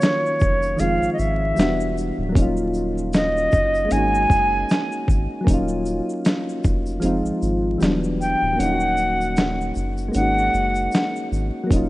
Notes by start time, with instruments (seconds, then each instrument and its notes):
Already playing: synth keys D#3 F#3 A#3 C#4 F4, flute C#5
0.01 snare, closed hi-hat, shaker
0.26 shaker
0.40 sub bass F1, kick, shaker
0.42 shaker
0.62 shaker
0.76 sub bass F1, synth keys D#3 F3 G#3, flute F5, closed hi-hat, shaker
0.81 synth keys C4 F4
1.02 sub bass G#1, shaker
1.13 flute D#5
1.19 sub bass G#1, flute E5, shaker
1.55 sub bass E1, synth keys E3 G3 B3, shaker
1.59 synth keys D4 F#4, snare, closed hi-hat, shaker
1.81 shaker
1.98 shaker
2.18 sub bass D1
2.29 synth keys F#3 A#3
2.35 sub bass D#1, synth keys C#4 D#4, kick, closed hi-hat, shaker
2.42 synth keys F4
2.57 shaker
2.74 shaker
2.98 shaker
3.13 flute D#5, snare, closed hi-hat, shaker
3.38 shaker
3.52 sub bass F#1, kick, shaker
3.75 shaker
3.85 synth keys G#3 A#3
3.91 sub bass G#1, synth keys C#4 D#4, flute G#5, closed hi-hat, shaker
3.98 synth keys F#4
4.15 shaker
4.30 sub bass F#1, kick, shaker
4.69 snare, closed hi-hat, shaker
4.72 shaker
4.92 shaker
5.08 sub bass G#1, kick, shaker
5.41 synth keys F#3 A#3
5.47 sub bass D#1, synth keys C#4 D#4, kick, closed hi-hat, shaker
5.54 synth keys F4
5.68 shaker
5.85 shaker
6.10 shaker
6.25 snare, closed hi-hat, shaker
6.49 shaker
6.64 sub bass F1, kick, shaker
6.86 shaker
7.00 sub bass F1, synth keys F3 G#3 C4, closed hi-hat, shaker
7.05 synth keys D#4 F4
7.25 sub bass G#1, shaker
7.42 sub bass G#1, shaker
7.78 sub bass E1, synth keys E3 G3 B3, shaker
7.83 synth keys F#3 D4, snare, closed hi-hat, shaker
8.04 shaker
8.21 flute G5, shaker
8.42 sub bass D1
8.53 synth keys F#3 A#3
8.59 sub bass D#1, synth keys C#4 D#4, flute F#5, closed hi-hat, shaker
8.65 synth keys F4
8.72 synth keys F#4
8.80 shaker
8.97 shaker
9.21 shaker
9.36 snare, closed hi-hat, shaker
9.61 shaker
9.75 sub bass F#1, shaker
9.77 shaker
9.97 shaker
10.08 synth keys G#3 A#3
10.14 sub bass G#1, synth keys C#4, flute F#5, closed hi-hat, shaker
10.18 synth keys D#4 F#4
10.38 shaker
10.54 sub bass F#1, shaker
10.75 shaker
10.92 snare, closed hi-hat, shaker
10.95 shaker
11.16 shaker
11.32 sub bass G#1, shaker
11.64 synth keys F#3 A#3
11.70 sub bass D#1, synth keys C#4 D#4, kick, closed hi-hat, shaker
11.76 synth keys F4